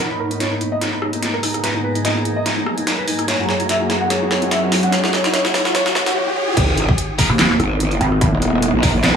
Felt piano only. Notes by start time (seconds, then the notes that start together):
0.10 D#4
0.20 A#4
0.31 D#4
0.40 C#5
0.51 D#4
0.61 D#4
0.72 D#5
0.81 D#4
0.92 D#4
1.13 D#4
1.22 D#4
1.34 A#4
1.43 D#4
1.54 D#4
1.63 B4
1.75 D#4
1.84 B4
1.95 D#4
2.05 D#5
2.16 D#4
2.25 D#4
2.36 D#5
2.46 D#4
2.57 D#4
2.78 D#4
2.87 D#4
2.98 B4
3.07 D#4
3.19 D#4
3.28 C#5
3.39 F#4
3.48 C#5
3.60 F#4
3.69 E5
3.80 F#4
3.90 F#4
4.01 F#5
4.10 C#5
4.21 F#4
4.31 C#5
4.42 F#4
4.51 E5
4.63 F#4
4.72 F#4
4.83 F#5
4.93 C#5
5.04 F#4
5.13 C#5
5.24 F#4
5.33 C#5
5.45 F#4
5.54 C#5
5.65 F#4
5.74 C#5
5.86 F#4
5.95 C#5
6.06 F#4
6.15 C#5
6.27 F#4
6.36 C#5
6.47 F#4